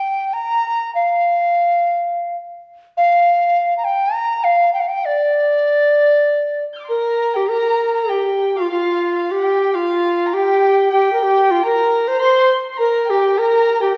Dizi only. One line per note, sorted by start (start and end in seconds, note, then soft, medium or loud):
0.00 0.35 G5 medium
0.33 0.93 A#5 medium
0.95 2.37 F5 medium
2.97 3.74 F5 medium
3.77 3.87 A#5 medium
3.85 4.15 G5 medium
4.14 4.45 A#5 medium
4.44 4.73 F5 medium
4.74 4.82 G5 medium
4.80 4.90 F5 medium
4.88 5.06 G5 medium
5.05 6.65 D5 medium
6.89 7.38 A#4 medium
7.36 7.51 G4 medium
7.50 8.12 A#4 medium
8.10 8.58 G4 medium
8.56 8.71 F4 medium
8.71 9.33 F4 medium
9.31 9.77 G4 medium
9.75 10.35 F4 medium
10.34 10.91 G4 medium
10.93 11.12 G4 medium
11.13 11.24 A#4 medium
11.23 11.52 G4 medium
11.51 11.64 F4 medium
11.65 12.09 A#4 medium
12.08 12.20 C5 medium
12.21 12.50 C5 medium
12.79 13.11 A#4 medium
13.10 13.40 G4 medium
13.38 13.81 A#4 medium
13.81 13.95 G4 medium